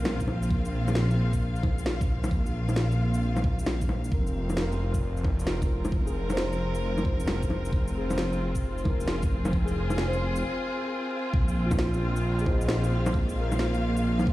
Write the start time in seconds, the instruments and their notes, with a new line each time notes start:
Already playing: detuned saw bass A#1, string section A#2 A#3 C4 F4 F5, synth keys G#4
0.03 synth keys A#4, snare, low bongo
0.20 kick, shaker
0.28 low bongo
0.43 shaker
0.51 kick
0.65 shaker
0.88 synth keys G#4, low bongo, shaker
0.95 snare
1.10 shaker
1.33 kick, shaker
1.56 shaker
1.63 kick, low bongo
1.79 shaker
1.86 snare
2.01 kick, shaker
2.24 low bongo, shaker
2.31 kick
2.46 shaker
2.69 low bongo, shaker
2.76 snare
2.92 shaker
3.14 shaker
3.36 low bongo, shaker
3.44 kick
3.59 shaker
3.66 snare, low bongo
3.82 kick, shaker
3.89 low bongo
4.04 shaker
4.12 detuned saw bass F1, string section C4, synth keys A#4, kick
4.27 shaker
4.50 low bongo, shaker
4.57 snare
4.61 string section F4, synth keys A#4
4.72 shaker
4.94 kick, shaker
5.17 shaker
5.24 kick, low bongo
5.37 string section A#4, shaker
5.45 synth keys F4, snare
5.62 kick, shaker
5.85 low bongo, shaker
5.92 kick
6.06 synth keys G#4, shaker
6.30 synth keys C5, low bongo, shaker
6.37 snare
6.52 shaker
6.75 shaker
6.98 low bongo, shaker
7.05 synth keys C5, kick
7.20 shaker
7.28 snare, low bongo
7.43 kick, shaker
7.50 low bongo
7.65 shaker
7.73 kick
7.88 shaker
7.98 synth keys G#4
8.10 low bongo, shaker
8.18 snare
8.33 shaker
8.55 kick, shaker
8.78 string section G#4, shaker
8.85 kick, low bongo
8.90 synth keys A#4
9.00 shaker
9.08 snare
9.22 kick, shaker
9.45 low bongo, shaker
9.53 kick
9.65 synth keys G#4, shaker
9.90 low bongo, shaker
9.98 snare
10.08 synth keys C5
10.13 shaker
10.36 shaker
11.34 detuned saw bass A#1, string section A#2, kick
11.48 shaker
11.66 synth keys F4
11.71 string section A#3, kick, low bongo, shaker
11.79 snare
11.90 string section F5, shaker
12.13 synth keys F4, shaker
12.39 synth keys G#4, shaker
12.46 synth keys C5, kick, low bongo
12.51 synth keys D#5
12.61 shaker
12.69 snare
12.84 shaker
13.06 low bongo, shaker
13.14 kick
13.29 shaker
13.40 synth keys A#4
13.52 low bongo, shaker
13.59 snare
13.74 shaker
13.97 shaker
14.19 low bongo, shaker
14.27 kick